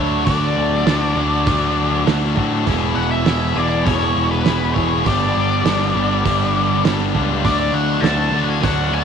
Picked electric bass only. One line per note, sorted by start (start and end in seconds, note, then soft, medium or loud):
0.00 0.25 D2 medium
0.27 0.55 D2 medium
0.57 0.85 D2 medium
0.86 1.15 D2 medium
1.16 1.45 D2 medium
1.48 2.04 D2 medium
2.07 2.35 D2 medium
2.37 2.65 A2 medium
2.67 2.95 E1 medium
2.96 3.24 E1 medium
3.26 3.55 E1 medium
3.56 3.84 E1 medium
3.86 4.14 E1 medium
4.16 4.44 E1 medium
4.47 4.75 E1 medium
4.76 5.04 E1 medium
5.07 5.34 G1 medium
5.36 5.64 G1 medium
5.65 5.93 G1 medium
5.95 6.23 G1 medium
6.26 6.82 G1 medium
6.86 7.14 G1 medium
7.15 7.43 C#2 medium
7.45 7.72 D2 medium
7.73 8.01 D2 medium
8.02 8.30 D2 medium
8.31 8.60 D2 medium
8.64 8.90 D2 medium
8.91 9.04 D2 medium